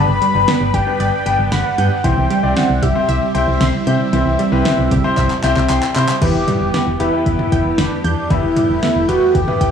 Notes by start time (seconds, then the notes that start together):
Already playing: D3 G3 B3 D4 G4 B4 B5
0.09 G1
0.22 G3, closed hi-hat
0.35 G1 B3 D4 G4 B4
0.48 B3, snare, closed hi-hat
0.61 G1
0.74 G1 G4 G5, kick, closed hi-hat
0.87 B3 D4 G4 B4
1.00 G1 D5 G5, closed hi-hat
1.26 G1 B3 D4 G4 B4 G5, closed hi-hat
1.39 G1
1.52 G1 F#5 B5, snare, closed hi-hat
1.78 G2 B3 D4 G4 B4 G6, closed hi-hat
2.04 C2 C3 E3 C4 E4 G4 C5 G5, kick, closed hi-hat
2.17 C2
2.30 G3, closed hi-hat
2.43 C2 C4 E4 G4 D5
2.56 C4 F#5, snare, closed hi-hat
2.69 C2
2.82 C2 G4 E5, kick, closed hi-hat
2.95 C4 E4 G4 C5
3.08 C2 E5, closed hi-hat
3.35 C2 C4 E4 G4 C5 G5, closed hi-hat
3.48 C2
3.61 C2 C6, snare, closed hi-hat
3.87 C3 C4 E4 G4 C5 E5 G6, closed hi-hat
4.13 C2 E3 C4 E4 G4 C5, closed hi-hat
4.26 C2
4.39 G3, closed hi-hat
4.52 C2 C4 E4 G4 B4
4.65 C4, snare, closed hi-hat
4.78 C2
4.91 C2 G4, kick, closed hi-hat, mid tom
5.04 C4 E4 G4 C5
5.17 C2 E5, kick, clap, closed hi-hat
5.30 clap
5.43 C2 C4 E4 G4 C5 E5 G5, clap, closed hi-hat
5.57 C2, clap
5.69 C2 G5 C6, clap, closed hi-hat
5.83 clap
5.96 C3 C4 E4 G4 C5 B5 G6, clap, closed hi-hat
6.09 clap
6.21 E1 E3 B3 E4 G4 B4, kick, closed hi-hat, crash
6.35 E1
6.47 G3, closed hi-hat, mid tom
6.61 E1
6.74 B3, snare, closed hi-hat
6.87 E1
7.00 E1 B3 E4 G4 B4, closed hi-hat
7.13 B3 E4 G4 B4
7.26 E1 E4, kick, closed hi-hat
7.39 mid tom
7.52 E1 G5, kick, closed hi-hat
7.65 E1
7.78 E1 D4 B5, snare, closed hi-hat
8.04 E2 D4 G6, closed hi-hat
8.30 E1 E3 A3 B3 E4 G4 B4, kick, closed hi-hat
8.43 E1
8.56 G3 E4, closed hi-hat, mid tom
8.69 E1
8.82 B3 E4, snare, closed hi-hat
8.96 E1
9.08 E1 B3 E4 F#4 G4 B4, closed hi-hat
9.35 E1 G4, kick, closed hi-hat
9.48 B3 E4 G4 B4, mid tom
9.61 E1 G5, kick, closed hi-hat